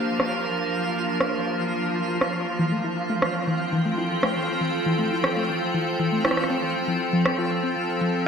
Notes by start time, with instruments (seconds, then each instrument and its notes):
Already playing: ambient pad F3 A#3 D4 A#4, synth texture F3 F5
0.20 cross-stick
0.45 closed hi-hat
0.57 closed hi-hat
0.83 closed hi-hat
0.87 closed hi-hat
0.91 closed hi-hat
0.95 closed hi-hat
1.04 closed hi-hat
1.08 closed hi-hat
1.20 cross-stick
1.33 closed hi-hat
1.46 closed hi-hat
1.58 closed hi-hat
1.83 closed hi-hat
1.92 closed hi-hat
1.96 closed hi-hat
2.00 closed hi-hat
2.21 cross-stick
2.34 closed hi-hat
2.46 closed hi-hat
2.59 synth arpeggio sound E3, closed hi-hat
2.72 synth arpeggio sound A3
2.82 ambient pad C4, synth arpeggio sound E4
2.97 ambient pad F4, closed hi-hat
3.10 synth arpeggio sound A3, closed hi-hat
3.22 cross-stick
3.35 closed hi-hat
3.47 synth arpeggio sound E3, closed hi-hat
3.60 closed hi-hat
3.70 synth arpeggio sound E3, ambient pad A4
3.85 synth arpeggio sound A3, closed hi-hat
3.98 synth arpeggio sound E4, closed hi-hat
4.23 synth arpeggio sound A3, cross-stick
4.36 closed hi-hat
4.38 closed hi-hat
4.41 closed hi-hat
4.43 closed hi-hat
4.46 closed hi-hat
4.48 closed hi-hat
4.61 synth arpeggio sound E3, closed hi-hat
4.86 synth arpeggio sound E3
4.99 synth arpeggio sound A3, closed hi-hat
5.11 synth arpeggio sound E4, closed hi-hat
5.24 cross-stick
5.36 synth arpeggio sound A3, closed hi-hat
5.49 closed hi-hat
5.62 closed hi-hat
5.74 synth arpeggio sound E3
5.87 closed hi-hat
5.99 synth arpeggio sound E3, closed hi-hat
6.12 synth arpeggio sound A3
6.25 synth arpeggio sound E4, cross-stick
6.31 cross-stick
6.37 cross-stick, closed hi-hat
6.44 cross-stick
6.50 synth arpeggio sound C4, closed hi-hat
6.63 closed hi-hat
6.66 closed hi-hat
6.72 closed hi-hat
6.88 synth arpeggio sound F3
7.00 closed hi-hat
7.13 synth arpeggio sound F3, closed hi-hat
7.26 synth arpeggio sound C4, cross-stick
7.38 synth arpeggio sound F4
7.51 closed hi-hat
7.63 synth arpeggio sound C4, ambient pad D4, closed hi-hat
8.01 synth arpeggio sound F3, closed hi-hat